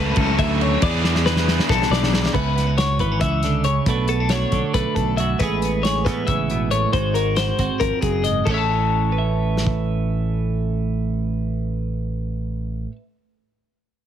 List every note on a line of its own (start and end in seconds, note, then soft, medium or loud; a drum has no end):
0.00 0.14 C#2 loud
0.00 0.80 C#3 medium
0.00 0.81 F#3 loud
0.00 0.81 A3 medium
0.00 0.82 C#4 loud
0.00 0.82 A4 loud
0.00 0.18 B4 medium
0.16 0.36 C#2 loud
0.16 0.39 A4 medium
0.16 kick loud
0.16 ride loud
0.38 0.76 D2 medium
0.38 0.62 E5 medium
0.38 kick medium
0.38 ride medium
0.61 0.82 C#5 medium
0.61 ride medium
0.82 1.58 E2 medium
0.82 2.33 E3 medium
0.82 2.34 B3 medium
0.82 2.34 D4 loud
0.82 2.35 G#4 loud
0.82 1.25 D5 medium
0.82 kick loud
0.82 ride loud
1.04 snare medium
1.15 snare medium
1.26 1.69 B4 medium
1.26 snare medium
1.36 snare medium
1.48 snare medium
1.59 snare medium
1.69 1.88 B1 medium
1.69 1.91 A4 medium
1.69 kick loud
1.69 snare medium
1.82 snare medium
1.90 2.28 B1 loud
1.90 2.34 D5 medium
1.90 snare loud
2.03 snare medium
2.13 snare loud
2.26 snare loud
2.33 3.01 C#2 medium
2.33 2.99 C#3 medium
2.33 2.56 B3 soft
2.33 2.56 C#4 soft
2.33 2.78 E4 medium
2.33 2.77 B4 medium
2.33 kick medium
2.33 crash medium
2.56 2.67 B3 medium
2.56 snare soft
2.56 closed hi-hat medium
2.67 2.99 C#4 soft
2.78 3.84 F#4 medium
2.78 2.99 C#5 medium
2.78 snare loud
2.78 closed hi-hat medium
2.99 3.18 G#1 medium
2.99 3.21 E3 medium
2.99 3.12 B3 soft
2.99 3.21 B4 medium
2.99 kick medium
2.99 closed hi-hat soft
3.12 3.87 C#4 soft
3.21 3.79 C#2 medium
3.21 3.43 E3 medium
3.21 3.64 E5 medium
3.21 kick medium
3.21 closed hi-hat medium
3.43 3.65 D3 medium
3.43 snare soft
3.43 closed hi-hat medium
3.64 3.87 C#3 medium
3.64 3.86 C#5 medium
3.64 closed hi-hat medium
3.86 4.44 B1 medium
3.86 4.53 B2 medium
3.86 4.74 A3 medium
3.86 4.09 D4 medium
3.86 4.31 F#4 medium
3.86 4.08 B4 medium
3.86 kick loud
3.86 closed hi-hat medium
4.08 4.20 B3 medium
4.08 4.31 A4 medium
4.08 closed hi-hat medium
4.20 4.53 D4 soft
4.29 5.19 F#4 medium
4.29 4.74 C#5 medium
4.29 snare medium
4.29 closed hi-hat medium
4.52 4.62 B1 medium
4.52 5.40 D3 medium
4.52 5.38 D4 soft
4.52 kick medium
4.52 closed hi-hat medium
4.74 4.84 B1 medium
4.74 5.38 A3 medium
4.74 4.95 B4 medium
4.74 kick medium
4.74 closed hi-hat medium
4.95 5.34 B1 medium
4.95 5.17 A4 medium
4.95 kick medium
4.95 closed hi-hat medium
5.17 5.38 F#2 medium
5.17 5.38 F#4 medium
5.17 5.40 E5 medium
5.17 closed hi-hat medium
5.39 6.06 A1 medium
5.39 6.28 A2 medium
5.39 6.97 G#3 medium
5.39 5.63 B3 medium
5.39 5.86 G#4 medium
5.39 5.83 B4 medium
5.39 kick medium
5.39 closed hi-hat medium
5.62 6.06 B3 medium
5.62 closed hi-hat medium
5.83 6.94 G#4 soft
5.83 6.05 C#5 medium
5.83 snare loud
5.83 closed hi-hat medium
6.05 6.25 E2 medium
6.05 6.91 E3 medium
6.05 6.93 B3 soft
6.05 6.27 B4 medium
6.05 kick medium
6.05 snare soft
6.05 closed hi-hat soft
6.27 6.85 A1 medium
6.27 6.50 C#3 medium
6.27 6.71 E5 medium
6.27 kick medium
6.27 closed hi-hat medium
6.50 6.71 B2 medium
6.50 closed hi-hat medium
6.71 6.93 A2 medium
6.71 6.93 C#5 medium
6.71 closed hi-hat soft
6.93 7.50 G#1 medium
6.93 7.80 G#2 medium
6.93 8.44 D#4 medium
6.93 7.15 F#4 medium
6.93 7.15 C5 medium
6.93 kick loud
6.93 closed hi-hat medium
7.14 7.37 F#4 medium
7.14 7.36 A#4 medium
7.14 closed hi-hat soft
7.36 7.59 F#4 medium
7.36 7.80 C5 medium
7.36 snare medium
7.36 closed hi-hat medium
7.59 7.68 G#1 medium
7.59 8.43 C4 medium
7.59 8.44 F#4 medium
7.59 kick medium
7.59 closed hi-hat soft
7.80 7.90 G#1 medium
7.80 8.02 F2 medium
7.80 8.01 A#4 medium
7.80 kick medium
7.80 closed hi-hat medium
8.01 8.40 F#1 medium
8.01 8.24 F#2 medium
8.01 8.24 G#4 medium
8.01 kick medium
8.01 closed hi-hat medium
8.24 8.46 G#2 medium
8.24 8.46 D#5 medium
8.24 closed hi-hat medium
8.45 12.85 A1 medium
8.45 12.89 A2 medium
8.45 12.91 A3 medium
8.45 8.50 A4 medium
8.45 kick medium
8.45 crash medium
8.50 12.93 C#4 medium
8.50 9.12 E4 soft
8.50 12.92 C#5 medium
8.54 12.92 E5 medium
8.54 12.96 A5 medium
9.12 13.02 B4 medium
9.18 13.05 E5 medium
9.57 snare medium
9.67 kick medium